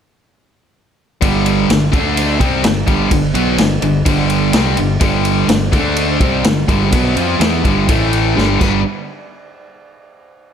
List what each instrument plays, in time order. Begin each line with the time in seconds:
1.21 fingered electric bass G1, distorted electric guitar G2 D3 G3, kick, ride
1.46 ride
1.69 fingered electric bass G1, distorted electric guitar G2 D3, snare, ride
1.92 fingered electric bass D2, distorted electric guitar D3 A3 D4, kick, ride
2.17 ride
2.39 fingered electric bass C2, distorted electric guitar C3 G3 C4, kick, ride
2.63 fingered electric bass G1, distorted electric guitar G2 D3, snare, ride
2.87 fingered electric bass G1, distorted electric guitar G2 D3 G3, kick, ride
3.11 fingered electric bass G1, distorted electric guitar G2 D3, kick, ride
3.34 fingered electric bass B1, distorted electric guitar B2 F#3 B3, ride
3.57 fingered electric bass G1, distorted electric guitar G2 D3, snare, ride
3.82 fingered electric bass G1, distorted electric guitar G2 D3, ride
4.05 fingered electric bass G1, distorted electric guitar G2 D3 G3, kick, ride
4.30 ride
4.53 fingered electric bass C2, distorted electric guitar C3 G3 C4, snare, ride
4.76 fingered electric bass G1, distorted electric guitar G2 D3, ride
5.00 fingered electric bass G1, distorted electric guitar G2 D3 G3, kick, ride
5.25 ride
5.48 fingered electric bass G1, distorted electric guitar G2 D3, snare, ride
5.72 fingered electric bass D2, distorted electric guitar D3 A3 D4, kick, ride
5.96 ride
6.20 fingered electric bass C2, distorted electric guitar C3 G3 C4, kick, ride
6.44 fingered electric bass G1, distorted electric guitar G2 D3, snare, ride
6.68 fingered electric bass G1, distorted electric guitar G2 D3 G3, kick, ride
6.91 fingered electric bass B1, distorted electric guitar B2 F#3 B3, kick, ride
7.15 fingered electric bass F2, distorted electric guitar F3 C4 F4, ride
7.40 fingered electric bass E2, distorted electric guitar E3 B3 E4, snare, ride
7.65 fingered electric bass G1, distorted electric guitar G2 D3 G3, kick, ride
7.88 fingered electric bass A1, distorted electric guitar A2 E3 A3, kick, ride
8.13 ride
8.36 fingered electric bass G1, distorted electric guitar G2 D3 G3, snare
8.60 fingered electric bass G1, overdriven electric guitar G2 D3, distorted electric guitar G3 B3 D4 B4, kick, crash